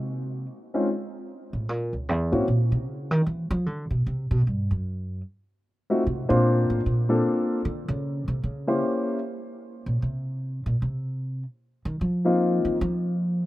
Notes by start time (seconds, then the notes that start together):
Already playing: C3
0.74 G#3 C4 C#4 D#4 F4
1.53 A2
1.69 A#2
1.93 C#2
2.09 E2
2.32 G#2 A#3 C4 C#4 E4 F#4
2.48 A#2
2.72 C3
2.87 C#3
3.11 D#3
3.26 E3
3.51 F3
3.66 D3
3.91 B2
4.07 C3
4.31 B2
4.47 G2
4.71 F#2
5.90 A3 C4 D#4 F4 F#4
6.07 C3
6.29 A#2 A#3 C4 D4 F4 C5
6.70 A2
6.86 A#2
7.09 A#3 C4 D4 F4 A4
7.65 D3
7.88 C#3
8.28 C3
8.44 C#3
8.67 A#3 C#4 E4 G4 C5
9.86 A#2
10.02 C3
10.66 A#2
10.82 C3
11.85 D#3
12.01 F3
12.25 F3 A#3 C4 D#4 F4
12.65 D#3
12.81 F3